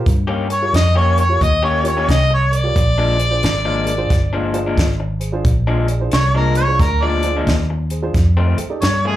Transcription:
0.06 G2, kick, closed hi-hat
0.27 D#3 A#3 C#4 G4
0.50 A#4 C#5, muted clean electric guitar stroke, closed hi-hat
0.62 F4 G4 A#4 C#5
0.73 F2 D#5, muted clean electric guitar stroke, snare, closed hi-hat
0.95 D#3 A#3 C#4 G4 C#5
1.17 A#4 C#5, closed hi-hat
1.29 F4 G4 A#4 C#5
1.41 D#2 D#5, muted clean electric guitar stroke, kick, closed hi-hat
1.62 D#3 A#3 C#4 G4 C#5
1.84 F4 G4 A#4 C#5, closed hi-hat
1.88 C#5
1.97 D#3 A#3 C#4 G4
2.08 C2 D#5, kick, snare, closed hi-hat
2.31 C#5, muted clean electric guitar stroke
2.51 A#4 C#5, closed hi-hat
2.57 D5
2.64 F4 G4 A#4 C#5
2.75 A#1, kick, closed hi-hat
2.98 A#2 F3 G#3 D4
3.18 G#4 C5, muted clean electric guitar stroke, closed hi-hat
3.30 D4 F4 G#4 C5
3.43 G#1, muted clean electric guitar stroke, snare, closed hi-hat
3.65 A#2 F3 G#3 D4
3.85 G#4 A#4, closed hi-hat
3.98 D4 F4 G#4 C5
4.10 G1, muted clean electric guitar stroke, kick, snare, closed hi-hat
4.33 A#2 F3 G#3 D4
4.54 D4 F4 G#4 C5, closed hi-hat
4.66 A#2 F3 G#3 D4
4.78 G#1, kick, snare, closed hi-hat
5.00 muted clean electric guitar stroke
5.20 G#4 C5, closed hi-hat
5.32 D4 F4 G#4 C5
5.45 A#1, kick, closed hi-hat
5.67 A#2 F3 G#3 D4
5.88 G#4 D5, muted clean electric guitar stroke, closed hi-hat
6.00 D4 F4 G#4 C5
6.12 C2 C#5, muted clean electric guitar stroke, snare, closed hi-hat
6.34 A#2 F3 G#3 D4 A#4
6.55 G#4 C#5 D5, closed hi-hat
6.68 D4 F4 G#4 C5
6.79 D2 A#4, muted clean electric guitar stroke, kick, snare, closed hi-hat
7.02 A#2 F3 G#3 D4 D5
7.23 D4 F4 G#4 C5, closed hi-hat
7.36 A#2 F3 G#3 D4
7.47 D#2, kick, snare, closed hi-hat
7.70 muted clean electric guitar stroke
7.90 G#4 C5, closed hi-hat
8.02 D4 F4 G#4 C5
8.14 F2, kick, snare, closed hi-hat
8.37 F2 D#3 A3 C4
8.58 A4 C5, muted fingered electric bass stroke, muted clean electric guitar stroke, closed hi-hat
8.70 D#4 G4 A4 D5
8.82 G2 C#5, muted clean electric guitar stroke, snare, closed hi-hat
9.05 F2 D#3 A3 C4 G#4

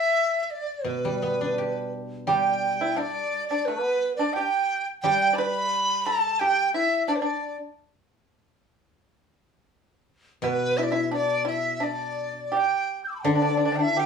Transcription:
Already playing: E5
0.43 E5
0.51 D5
0.84 B2 B4
1.05 G3
1.22 B3
1.41 D4
1.58 G4
2.27 G3 G4 G5
2.81 E4
2.96 D4 D5
3.48 D4 D5
3.65 B3 B4
4.16 D4 D5
4.33 G4 G5
5.02 G3 G4 G5
5.33 D5 B5
5.38 B4
6.06 A4 A5
6.39 G4 G5
6.74 E4 E5
7.07 D4 D5
7.16 B4
7.20 D4 D5
10.42 B2 B3 B4
10.77 E4 E5
10.83 D5
10.91 E4 E5
11.11 D4 D5
11.45 E4 E5
11.80 D4 D5
12.52 G4
12.57 G5
13.04 G6
13.08 D6 E6
13.15 A5 B5
13.21 D3 D4 E5 G5
13.28 D4 D5
13.35 D4
13.42 D4
13.50 D4
13.57 D4
13.65 D4
13.72 D4 G5
13.79 D4 E4 E5
13.97 G4 G5

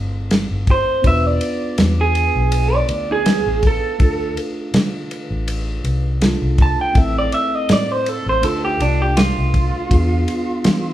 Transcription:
Already playing: G1 A3 C4 E4 A4 C5
0.31 snare, ride
0.51 G1
0.67 kick, ride
0.71 C5
1.02 E1 B3 D4 F4 B4, kick, ride
1.07 E5
1.27 D5
1.41 ride
1.78 E2, snare, ride
2.01 G#4
2.15 ride
2.35 B1
2.52 ride
2.75 D5
2.89 D2, ride
3.12 G#4
3.26 snare, ride
3.46 A1
3.63 kick, ride
3.67 A4
3.98 D2 A3 D4 F4 A4, kick, ride
4.37 ride
4.74 D3, snare, ride
5.11 ride
5.31 A1
5.48 ride
5.84 C2, ride
6.21 A3 D4 F4 A4, snare, ride
6.42 C2
6.58 kick, ride
6.62 A5
6.81 G5
6.93 A1 A3 C4 E4 A4, kick, ride
6.98 E5
7.18 D5
7.32 E5, ride
7.55 D#5
7.69 A2 D5, snare, ride
7.92 C5
8.06 A4, ride
8.26 A1 C5
8.41 D2 A3 D4 F4 A4, ride
8.65 G4
8.80 C2 D4, ride
9.02 G4
9.17 F4, snare, ride
9.38 C2
9.54 kick, ride
9.89 E2 B3 D4 F4 G#4, kick, ride
10.28 ride
10.64 E3, snare, ride

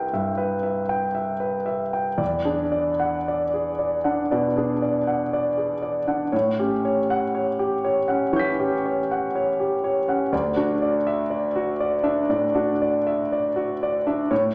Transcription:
Already playing: C2 B4 E5 G5
0.13 G2 E5
0.38 B4
0.63 E5
0.89 G5
1.15 E5
1.40 B4
1.66 E5
1.93 G5
2.18 E2 D5
2.45 D4 G#4
2.72 D5
2.99 F#5
3.28 D5
3.54 G#4
3.79 D5
4.04 D4 F#5
4.31 B2 D5
4.57 D4 G#4
4.82 D5
5.07 F#5
5.33 D5
5.58 G#4
5.82 D5
6.07 D4 F#5
6.32 A2 C#5
6.59 C#4 G4
6.85 C#5
7.10 F#5
7.35 C#5
7.59 G4
7.84 C#5
8.08 C#4 F#5
8.33 E3 C#5 C#6 G6
8.39 B6
8.60 C#4 G4
8.86 C#5
9.11 F#5
9.36 C#5
9.60 G4
9.84 C#5
10.08 C#4 F#5
10.32 D2 D5
10.56 D4 F#4
10.82 D5
11.07 E5
11.30 D5
11.56 F#4
11.80 D5
12.04 D4 E5
12.29 A2 D5
12.55 D4 F#4
12.82 D5
13.07 E5
13.32 D5
13.56 F#4
13.83 D5
14.07 D4 E5
14.31 A2 C#5

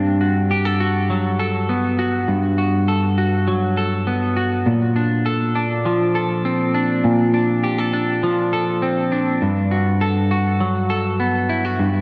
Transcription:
Already playing: G2 D4 A4
0.21 F#4
0.51 G4
0.65 A4
0.80 F#4
1.10 F#3
1.39 A4
1.69 B3
1.99 F#4
2.28 G2
2.58 F#4
2.88 A4
3.18 F#4
3.48 F#3
3.77 A4
4.07 B3
4.37 F#4
4.66 A#2
4.96 D4
5.26 A4
5.55 D4
5.85 F3
6.15 A4
6.45 C4
6.74 D4
7.04 A#2
7.34 D4
7.64 G4
7.78 A4
7.93 D4
8.23 F3
8.53 A4
8.82 C4
9.12 D4
9.42 G2
9.71 F#4
10.01 A4
10.31 F#4
10.60 F#3
10.90 A4
11.20 B3
11.49 E4
11.65 F#4
11.79 G2

